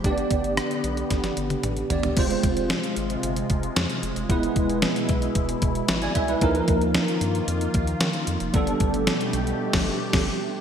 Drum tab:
CC |----------------|x---------------|----------------|----------------|
HH |xxxxxxxxxxxxxxxx|xxxxxxxxxxxxxxxx|xxxxxxxxxxxxxxxx|xxxxxxxxxxxxxxxx|
SD |----r---oo------|----o-------o---|----o-------o---|----o-------o---|
T1 |-----------o----|----------------|----------------|----------------|
T2 |------------o---|----------------|----------------|----------------|
FT |--------------oo|----------------|----------------|----------------|
BD |o-o-----o-------|o-o-------o-----|o-o---o-o-o---o-|o-o-------o-----|

CC |---------x--x---|
HH |xxxxxxxx--------|
SD |----o----o--o---|
T1 |----------------|
T2 |----------------|
FT |----------------|
BD |o-o------o--o---|